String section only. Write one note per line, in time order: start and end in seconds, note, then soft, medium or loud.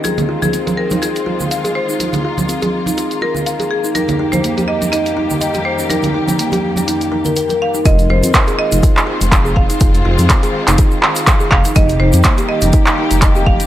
0.00 3.91 D#3 medium
0.04 3.91 G#3 medium
0.04 1.98 C4 medium
0.04 3.91 F4 medium
2.00 7.81 A#3 medium
3.95 7.81 F2 medium
3.95 7.81 D#3 medium
3.95 7.81 G3 medium
3.95 7.81 G4 medium
7.85 13.66 D#3 medium
7.85 11.72 G#3 medium
7.85 11.71 C4 medium
7.85 11.72 F4 medium
11.76 13.66 G3 medium
11.76 13.66 A#3 medium
11.76 13.66 G4 medium